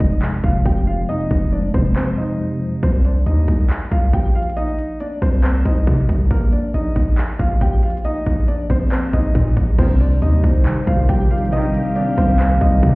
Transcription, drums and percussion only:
0.00 kick loud
0.22 clap loud
0.44 kick loud
0.66 kick loud
1.31 kick medium
1.74 kick loud
1.96 clap loud
2.83 kick loud
2.83 closed hi-hat medium
3.05 closed hi-hat medium
3.26 closed hi-hat medium
3.48 kick loud
3.48 closed hi-hat medium
3.70 clap loud
3.70 closed hi-hat medium
3.92 kick loud
3.92 closed hi-hat medium
4.13 kick loud
4.13 closed hi-hat medium
4.35 closed hi-hat medium
4.42 closed hi-hat medium
4.50 closed hi-hat medium
4.57 closed hi-hat medium
4.79 closed hi-hat medium
5.00 closed hi-hat medium
5.22 kick loud
5.22 open hi-hat medium
5.44 clap loud
5.44 closed hi-hat medium
5.65 kick loud
5.65 closed hi-hat medium
5.87 kick loud
5.87 closed hi-hat medium
6.09 kick loud
6.09 closed hi-hat medium
6.31 kick loud
6.31 closed hi-hat medium
6.52 closed hi-hat medium
6.74 closed hi-hat medium
6.96 kick loud
6.96 closed hi-hat medium
7.18 clap loud
7.18 closed hi-hat medium
7.39 kick loud
7.39 closed hi-hat medium
7.61 kick loud
7.61 closed hi-hat medium
7.83 closed hi-hat medium
7.90 closed hi-hat medium
7.97 closed hi-hat medium
8.05 closed hi-hat medium
8.26 kick medium
8.26 closed hi-hat medium
8.48 closed hi-hat medium
8.70 kick loud
8.70 open hi-hat medium
8.92 clap loud
8.92 closed hi-hat medium
9.13 kick loud
9.13 closed hi-hat medium
9.35 kick loud
9.35 closed hi-hat medium
9.57 kick loud
9.57 closed hi-hat medium
9.79 kick loud
9.79 closed hi-hat medium
9.79 crash loud
10.00 closed hi-hat medium
10.22 closed hi-hat medium
10.44 kick loud
10.44 closed hi-hat medium
10.66 clap loud
10.66 closed hi-hat medium
10.87 kick loud
10.87 closed hi-hat medium
11.09 kick loud
11.09 closed hi-hat medium
11.31 closed hi-hat medium
11.38 closed hi-hat medium
11.45 closed hi-hat medium
11.52 closed hi-hat medium
11.74 closed hi-hat medium
11.96 closed hi-hat medium
12.18 kick loud
12.18 open hi-hat medium
12.39 clap loud
12.39 closed hi-hat medium
12.61 kick loud
12.61 closed hi-hat medium
12.83 kick loud
12.83 closed hi-hat medium

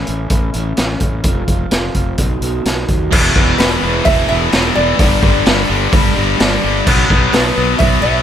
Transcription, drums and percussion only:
0.07 closed hi-hat medium
0.30 kick loud
0.30 closed hi-hat medium
0.54 closed hi-hat medium
0.77 snare medium
0.77 closed hi-hat medium
1.00 kick medium
1.00 closed hi-hat medium
1.23 kick loud
1.23 closed hi-hat medium
1.48 kick medium
1.48 closed hi-hat medium
1.71 snare loud
1.71 closed hi-hat medium
1.94 kick medium
1.94 closed hi-hat medium
2.18 kick medium
2.18 closed hi-hat medium
2.42 closed hi-hat medium
2.65 snare medium
2.65 closed hi-hat medium
2.88 kick medium
2.88 closed hi-hat medium
3.12 kick loud
3.12 crash loud
3.36 kick medium
3.59 snare loud
3.59 open hi-hat medium
4.06 kick loud
4.06 open hi-hat medium
4.52 snare loud
4.52 open hi-hat medium
4.99 kick loud
4.99 open hi-hat medium
5.23 kick medium
5.46 snare loud
5.46 open hi-hat medium
5.92 kick loud
5.92 open hi-hat medium
6.40 snare loud
6.40 open hi-hat medium
6.87 kick loud
6.87 crash loud
7.10 kick medium
7.33 snare loud
7.33 open hi-hat medium
7.80 kick loud
7.80 open hi-hat medium

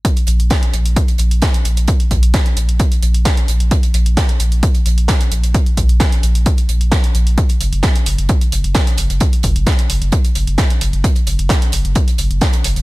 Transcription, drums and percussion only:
0.05 kick loud
0.05 closed hi-hat medium
0.17 closed hi-hat soft
0.17 closed hi-hat medium
0.27 closed hi-hat medium
0.40 closed hi-hat medium
0.50 kick loud
0.50 snare loud
0.50 closed hi-hat medium
0.63 closed hi-hat medium
0.73 closed hi-hat medium
0.86 closed hi-hat medium
0.96 kick loud
0.96 closed hi-hat medium
1.08 closed hi-hat soft
1.08 closed hi-hat medium
1.18 closed hi-hat medium
1.31 closed hi-hat medium
1.42 kick loud
1.42 snare loud
1.42 closed hi-hat medium
1.54 closed hi-hat medium
1.54 closed hi-hat soft
1.65 closed hi-hat medium
1.77 closed hi-hat soft
1.77 closed hi-hat medium
1.88 kick loud
1.88 closed hi-hat medium
2.00 closed hi-hat medium
2.11 kick medium
2.11 closed hi-hat medium
2.23 closed hi-hat medium
2.34 kick loud
2.34 snare loud
2.34 closed hi-hat medium
2.46 closed hi-hat medium
2.57 closed hi-hat medium
2.69 closed hi-hat medium
2.79 kick loud
2.79 closed hi-hat medium
2.92 closed hi-hat medium
2.92 closed hi-hat soft
3.03 closed hi-hat medium
3.14 closed hi-hat medium
3.25 kick loud
3.25 snare loud
3.25 closed hi-hat medium
3.25 closed hi-hat loud
3.37 closed hi-hat medium
3.48 closed hi-hat medium
3.60 closed hi-hat medium
3.71 kick loud
3.71 closed hi-hat medium
3.83 closed hi-hat medium
3.83 closed hi-hat soft
3.94 closed hi-hat medium
4.06 closed hi-hat medium
4.17 kick loud
4.17 snare loud
4.17 closed hi-hat medium
4.29 closed hi-hat medium
4.40 closed hi-hat medium
4.52 closed hi-hat medium
4.63 kick loud
4.63 closed hi-hat medium
4.74 closed hi-hat soft
4.74 closed hi-hat medium
4.86 closed hi-hat medium
4.98 closed hi-hat medium
5.08 kick loud
5.08 snare loud
5.08 closed hi-hat medium
5.21 closed hi-hat soft
5.21 closed hi-hat medium
5.32 closed hi-hat medium
5.44 closed hi-hat medium
5.44 closed hi-hat soft
5.54 kick loud
5.54 closed hi-hat medium
5.66 closed hi-hat medium
5.77 kick medium
5.77 closed hi-hat medium
5.89 closed hi-hat soft
6.00 kick loud
6.00 snare loud
6.00 closed hi-hat medium
6.12 closed hi-hat soft
6.23 closed hi-hat medium
6.35 closed hi-hat soft
6.46 kick loud
6.46 closed hi-hat medium
6.58 closed hi-hat soft
6.69 closed hi-hat medium
6.81 closed hi-hat soft
6.92 kick loud
6.92 snare loud
6.92 closed hi-hat medium
7.04 closed hi-hat soft
7.15 closed hi-hat medium
7.27 closed hi-hat soft
7.38 kick loud
7.38 closed hi-hat medium
7.49 closed hi-hat soft
7.61 closed hi-hat medium
7.61 open hi-hat loud
7.73 closed hi-hat soft
7.83 kick loud
7.83 snare loud
7.83 closed hi-hat medium
7.96 closed hi-hat medium
8.06 closed hi-hat medium
8.06 open hi-hat loud
8.18 closed hi-hat medium
8.29 kick loud
8.29 closed hi-hat medium
8.41 closed hi-hat soft
8.52 closed hi-hat medium
8.52 open hi-hat loud
8.64 closed hi-hat soft
8.75 kick loud
8.75 snare loud
8.75 closed hi-hat medium
8.87 closed hi-hat soft
8.97 closed hi-hat medium
8.97 open hi-hat loud
9.10 closed hi-hat soft
9.20 kick loud
9.20 closed hi-hat medium
9.33 closed hi-hat soft
9.43 kick medium
9.43 closed hi-hat medium
9.43 open hi-hat loud
9.56 closed hi-hat medium
9.67 kick loud
9.67 snare loud
9.67 closed hi-hat medium
9.79 closed hi-hat medium
9.90 closed hi-hat medium
9.90 open hi-hat loud
10.02 closed hi-hat soft
10.12 kick loud
10.12 closed hi-hat medium
10.25 closed hi-hat soft
10.35 closed hi-hat medium
10.35 open hi-hat medium
10.47 closed hi-hat soft
10.58 kick loud
10.58 snare loud
10.58 closed hi-hat medium
10.70 closed hi-hat soft
10.81 closed hi-hat medium
10.81 open hi-hat loud
10.93 closed hi-hat soft
11.04 kick loud
11.04 closed hi-hat medium
11.04 closed hi-hat loud
11.16 closed hi-hat soft
11.27 closed hi-hat medium
11.27 open hi-hat loud
11.39 closed hi-hat medium
11.49 kick loud
11.49 snare loud
11.49 closed hi-hat medium
11.62 closed hi-hat medium
11.72 closed hi-hat medium
11.72 open hi-hat loud
11.85 closed hi-hat medium
11.95 kick loud
11.95 closed hi-hat medium
12.08 closed hi-hat medium
12.08 closed hi-hat soft
12.18 closed hi-hat medium
12.18 open hi-hat medium
12.31 closed hi-hat medium
12.41 kick loud
12.41 snare loud
12.41 closed hi-hat medium
12.53 closed hi-hat soft
12.64 closed hi-hat medium
12.64 open hi-hat loud
12.76 closed hi-hat soft

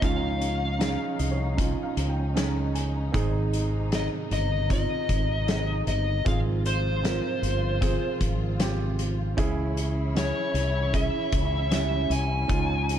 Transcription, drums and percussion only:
0.02 kick loud
0.02 closed hi-hat medium
0.41 closed hi-hat medium
0.81 snare loud
0.81 closed hi-hat medium
1.19 closed hi-hat medium
1.58 kick medium
1.58 closed hi-hat medium
1.97 closed hi-hat medium
2.37 snare loud
2.37 closed hi-hat medium
2.75 closed hi-hat medium
3.14 kick loud
3.14 closed hi-hat medium
3.53 closed hi-hat medium
3.92 snare loud
3.92 closed hi-hat medium
4.31 closed hi-hat medium
4.70 kick medium
4.70 closed hi-hat medium
5.09 kick medium
5.09 closed hi-hat medium
5.48 snare loud
5.48 closed hi-hat medium
5.87 closed hi-hat medium
6.26 kick loud
6.26 closed hi-hat medium
6.66 closed hi-hat medium
7.05 snare loud
7.05 closed hi-hat medium
7.43 closed hi-hat medium
7.82 kick medium
7.82 closed hi-hat medium
8.21 kick medium
8.21 closed hi-hat medium
8.60 snare loud
8.60 closed hi-hat medium
8.99 closed hi-hat medium
9.38 kick loud
9.38 closed hi-hat medium
9.77 closed hi-hat medium
10.16 snare loud
10.16 closed hi-hat medium
10.55 closed hi-hat medium
10.94 kick medium
10.94 closed hi-hat medium
11.32 kick medium
11.32 closed hi-hat medium
11.71 snare loud
11.71 closed hi-hat medium
12.11 closed hi-hat medium
12.49 kick medium
12.49 closed hi-hat medium
12.89 closed hi-hat medium

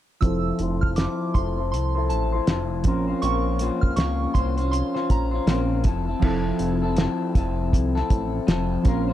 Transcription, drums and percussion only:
0.22 kick medium
0.22 closed hi-hat medium
0.59 closed hi-hat medium
0.83 kick medium
0.96 snare medium
0.96 closed hi-hat medium
1.35 kick medium
1.35 closed hi-hat medium
1.74 closed hi-hat medium
2.10 closed hi-hat medium
2.47 snare medium
2.47 closed hi-hat medium
2.84 kick medium
2.84 closed hi-hat medium
3.22 closed hi-hat medium
3.59 closed hi-hat medium
3.83 kick medium
3.97 snare loud
3.97 closed hi-hat medium
4.35 kick medium
4.35 closed hi-hat medium
4.58 closed hi-hat soft
4.73 closed hi-hat medium
4.96 snare soft
5.10 kick medium
5.10 closed hi-hat medium
5.47 snare medium
5.47 closed hi-hat medium
5.84 kick medium
5.84 closed hi-hat medium
6.22 kick medium
6.22 crash medium
6.59 closed hi-hat medium
6.96 snare loud
6.96 closed hi-hat medium
7.35 kick medium
7.35 closed hi-hat medium
7.73 kick medium
7.73 closed hi-hat medium
7.96 snare soft
8.10 kick medium
8.10 closed hi-hat medium
8.48 snare medium
8.48 closed hi-hat medium
8.85 kick loud
8.85 closed hi-hat medium

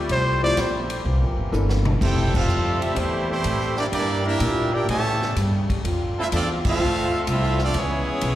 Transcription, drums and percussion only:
0.09 kick soft
0.09 ride medium
0.57 kick soft
0.57 snare medium
0.57 hi-hat pedal medium
0.57 ride medium
0.90 ride medium
1.05 kick soft
1.53 hi-hat pedal medium
1.69 snare medium
1.85 mid tom loud
2.01 kick medium
2.01 crash loud
2.34 kick loud
2.34 crash loud
2.49 hi-hat pedal medium
2.82 ride medium
2.96 kick soft
2.96 ride medium
3.44 kick soft
3.44 hi-hat pedal medium
3.44 ride medium
3.61 snare soft
3.77 snare medium
3.93 kick soft
3.93 ride medium
4.40 kick soft
4.40 hi-hat pedal medium
4.40 ride medium
4.89 kick soft
4.89 ride medium
5.22 snare medium
5.36 kick soft
5.36 hi-hat pedal medium
5.36 ride medium
5.70 kick medium
5.70 ride medium
5.85 kick soft
5.85 ride medium
6.32 kick soft
6.32 hi-hat pedal medium
6.32 ride medium
6.65 kick loud
6.65 crash medium
7.27 kick soft
7.27 hi-hat pedal medium
7.27 ride medium
7.43 snare soft
7.59 snare medium
7.74 kick soft
7.74 ride medium
8.21 kick soft
8.21 hi-hat pedal medium
8.21 ride medium

